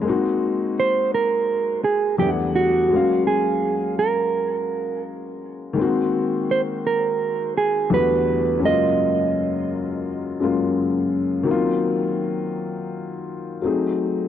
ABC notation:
X:1
M:4/4
L:1/8
Q:"Swing 16ths" 1/4=84
K:Ebdor
V:1 name="Clean electric guitar"
z2 c B2 A =G ^F- | ^F A2 B3 z2 | z2 c B2 A =B2 | e6 z2 |
z8 |]
V:2 name="Upright piano"
[A,B,CEG]6 [=E,,=G,=A,=B,=D=E^f]2 | [G,A,B,Df]8 | [E,A,B,CG]6 [=E,,=D,=G,=A,=B,^F]2 | [G,,D,G,A,B,F]4- [G,,D,G,A,B,F] [G,,D,G,A,B,F]3 |
[E,G,B,CF]6 [G,=A,CE_A]2 |]